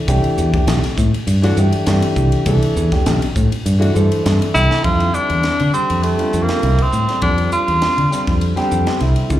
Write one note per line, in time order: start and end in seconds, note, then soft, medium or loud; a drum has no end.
0.07 0.21 C2 loud
0.07 0.49 E3 medium
0.07 0.50 A3 medium
0.07 0.50 D4 medium
0.07 0.50 G4 loud
0.07 kick loud
0.07 hi-hat pedal medium
0.07 ride medium
0.24 muted fingered electric bass stroke soft
0.24 ride medium
0.38 0.51 E2 medium
0.38 hi-hat pedal medium
0.53 0.80 E3 medium
0.53 0.81 A3 medium
0.53 0.81 D4 medium
0.53 0.81 G4 medium
0.53 muted fingered electric bass stroke soft
0.53 kick medium
0.53 ride medium
0.67 0.80 B1 medium
0.67 snare loud
0.67 hi-hat pedal medium
0.67 ride medium
0.84 0.90 D4 soft
0.84 0.91 A4 soft
0.84 snare soft
0.84 ride medium
0.98 1.11 A2 medium
0.98 kick medium
0.98 hi-hat pedal medium
1.14 muted fingered electric bass stroke soft
1.14 ride medium
1.27 1.52 G2 medium
1.27 hi-hat pedal medium
1.27 ride medium
1.42 1.55 E3 loud
1.42 1.56 A3 loud
1.42 1.56 D4 loud
1.42 1.56 F#4 loud
1.42 snare soft
1.42 ride medium
1.57 1.70 G2 medium
1.57 1.85 E3 medium
1.57 1.85 A3 medium
1.57 1.85 D4 medium
1.57 1.85 G4 medium
1.57 hi-hat pedal medium
1.73 ride medium
1.86 2.00 G2 medium
1.86 2.42 E3 medium
1.86 2.42 A3 medium
1.86 2.42 D4 medium
1.86 2.43 G4 medium
1.86 snare loud
1.86 hi-hat pedal medium
1.86 ride medium
2.02 ride medium
2.16 2.30 C2 medium
2.16 kick medium
2.16 hi-hat pedal medium
2.32 ride medium
2.46 2.59 C2 loud
2.46 2.88 E3 medium
2.46 2.88 A3 medium
2.46 2.88 D4 medium
2.46 2.89 A4 medium
2.46 kick loud
2.46 hi-hat pedal medium
2.46 ride medium
2.62 muted fingered electric bass stroke soft
2.62 ride medium
2.76 2.89 E2 medium
2.76 hi-hat pedal medium
2.91 3.19 E3 medium
2.91 3.19 A3 medium
2.91 3.19 D4 medium
2.91 3.19 G4 medium
2.91 muted fingered electric bass stroke soft
2.91 kick medium
2.91 snare soft
2.91 ride medium
3.06 3.19 B1 medium
3.06 snare loud
3.06 hi-hat pedal medium
3.06 ride medium
3.20 3.28 D4 soft
3.20 3.28 F#4 soft
3.20 ride medium
3.36 3.49 A2 loud
3.36 kick medium
3.36 hi-hat pedal medium
3.51 muted fingered electric bass stroke soft
3.51 ride medium
3.66 3.90 G2 medium
3.66 hi-hat pedal medium
3.66 ride medium
3.79 3.92 E3 loud
3.79 3.93 A3 loud
3.79 3.93 D4 medium
3.79 3.94 F#4 loud
3.79 ride medium
3.93 4.08 G2 medium
3.93 4.21 E3 medium
3.93 4.22 A3 medium
3.93 4.22 D4 medium
3.93 4.22 A4 medium
3.93 4.22 C5 medium
3.93 hi-hat pedal medium
4.12 ride medium
4.23 4.38 G2 medium
4.23 4.79 E3 medium
4.23 4.79 A3 medium
4.23 4.79 D4 medium
4.23 4.79 A4 medium
4.23 4.52 E5 medium
4.23 snare loud
4.23 hi-hat pedal medium
4.23 ride medium
4.42 ride medium
4.54 4.68 C2 medium
4.54 4.85 E4 loud
4.54 4.82 G5 medium
4.54 snare medium
4.54 hi-hat pedal medium
4.71 snare medium
4.82 5.09 F2 medium
4.82 5.52 D3 medium
4.82 5.53 G3 medium
4.82 5.53 C4 medium
4.82 5.53 E4 medium
4.82 5.16 F4 loud
4.82 kick loud
4.82 ride medium
5.00 ride soft
5.14 5.73 D4 medium
5.14 hi-hat pedal medium
5.30 5.41 E2 medium
5.30 ride medium
5.43 snare medium
5.43 ride medium
5.59 5.72 D3 medium
5.59 5.66 C4 soft
5.59 5.67 E4 soft
5.59 ride medium
5.73 6.15 D3 medium
5.73 6.15 G3 medium
5.73 6.05 C4 medium
5.73 6.15 C4 medium
5.73 6.15 G4 medium
5.73 hi-hat pedal medium
5.90 6.14 F2 medium
5.90 ride medium
6.03 6.44 A3 medium
6.03 ride medium
6.17 6.58 D3 medium
6.17 6.59 G3 medium
6.17 6.59 C4 medium
6.17 6.59 F4 medium
6.17 ride medium
6.33 6.46 F2 medium
6.33 hi-hat pedal medium
6.43 6.84 A#3 medium
6.49 snare loud
6.49 ride medium
6.62 6.76 C2 medium
6.62 7.04 D3 medium
6.62 7.04 G3 medium
6.62 7.05 C4 medium
6.62 7.05 E4 medium
6.62 ride medium
6.79 7.22 C4 medium
6.79 kick medium
6.79 ride medium
6.92 7.06 A2 medium
6.92 hi-hat pedal medium
7.08 7.21 D3 medium
7.08 7.21 G3 soft
7.08 7.22 C4 medium
7.08 7.22 D4 medium
7.08 snare soft
7.08 ride medium
7.22 7.47 F2 medium
7.22 7.91 D3 medium
7.22 7.91 G3 medium
7.22 7.91 C4 medium
7.22 7.50 D4 medium
7.22 7.92 F4 medium
7.22 kick loud
7.22 ride medium
7.38 ride medium
7.52 8.38 F4 medium
7.52 hi-hat pedal medium
7.68 7.79 E2 medium
7.68 ride medium
7.82 snare medium
7.82 ride medium
7.97 8.09 D3 medium
7.97 8.04 C4 soft
7.97 8.05 E4 soft
7.97 ride medium
8.11 8.53 D3 medium
8.11 8.53 G3 medium
8.11 8.53 C4 medium
8.11 8.53 D4 medium
8.11 snare soft
8.11 hi-hat pedal medium
8.27 8.52 F2 medium
8.27 kick medium
8.27 snare soft
8.27 ride medium
8.41 ride medium
8.56 8.97 D3 medium
8.56 8.97 G3 medium
8.56 8.97 C4 loud
8.56 8.97 G4 loud
8.56 snare soft
8.56 ride soft
8.71 8.84 F2 medium
8.71 hi-hat pedal medium
8.87 snare loud
8.87 ride medium
9.00 9.14 C2 medium
9.00 9.30 D3 medium
9.00 9.30 G3 medium
9.00 9.30 C4 medium
9.00 9.31 E4 medium
9.00 snare soft
9.00 ride medium
9.16 ride medium
9.30 9.40 C#2 medium
9.30 9.40 D#3 medium
9.30 9.40 G#3 medium
9.30 9.40 C#4 medium
9.30 9.40 F4 medium
9.30 kick medium
9.30 hi-hat pedal medium